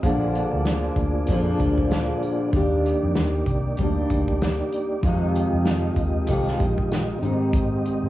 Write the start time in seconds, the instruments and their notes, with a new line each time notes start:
0.01 fingered electric bass A#1, nylon-string guitar A#2 D3 F3 A#3 D4 G#4, tonewheel organ A#3 F4 G#4, kick, closed hi-hat
0.06 tonewheel organ D5
0.35 closed hi-hat
0.53 fingered electric bass D2
0.65 nylon-string guitar F3 A#3 D4 G#4, snare, closed hi-hat
0.96 fingered electric bass D2, kick, closed hi-hat
1.27 fingered electric bass F2, nylon-string guitar A#2 D3 F3 A#3, kick, closed hi-hat
1.32 nylon-string guitar D4 G#4
1.60 fingered electric bass D2, kick, closed hi-hat
1.78 kick
1.91 snare, closed hi-hat
2.23 closed hi-hat
2.51 fingered electric bass D#2, nylon-string guitar D#3 G3 A#3, tonewheel organ A#3 D#4 G4, kick, closed hi-hat
2.56 nylon-string guitar D4 G4, tonewheel organ D5
2.86 closed hi-hat
3.03 fingered electric bass F2
3.15 fingered electric bass D#2, snare, closed hi-hat
3.46 fingered electric bass C2, kick, closed hi-hat
3.77 fingered electric bass D2, nylon-string guitar G3 A#3 D4, kick, closed hi-hat
3.81 nylon-string guitar G4
4.10 fingered electric bass D2, kick, closed hi-hat
4.28 kick
4.41 snare, closed hi-hat
4.72 closed hi-hat
5.01 nylon-string guitar F2 C3 D#3, fingered electric bass F2, tonewheel organ G#3 F4 G4, kick, closed hi-hat
5.05 nylon-string guitar G#3 D#4 G4, tonewheel organ D#5
5.35 closed hi-hat
5.53 fingered electric bass F2
5.65 snare, closed hi-hat
5.96 fingered electric bass D#2, kick, closed hi-hat
6.27 fingered electric bass C2, nylon-string guitar F2 C3 D#3 G#3 D#4 G4, kick, closed hi-hat
6.48 snare
6.59 fingered electric bass A#1, nylon-string guitar D#3 G#3 D#4 G4, kick, closed hi-hat
6.78 kick
6.92 snare, closed hi-hat
7.19 fingered electric bass G#1, nylon-string guitar G3 C4 D#4, tonewheel organ G#3 C4 G4, closed hi-hat
7.24 nylon-string guitar G#2 D#3, tonewheel organ D#5
7.53 kick, closed hi-hat
7.86 closed hi-hat
8.03 fingered electric bass G#1